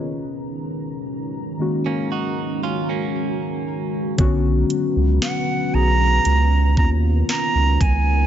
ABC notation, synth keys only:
X:1
M:4/4
L:1/16
Q:1/4=58
K:F#
V:1 name="Synth keys"
[GB] z4 z [D,G,A,CF]4 z6 | [=D,F,B,CF]4 z2 [D,F,B,CG]2 z2 [^D,A,B,CE]4 z2 |]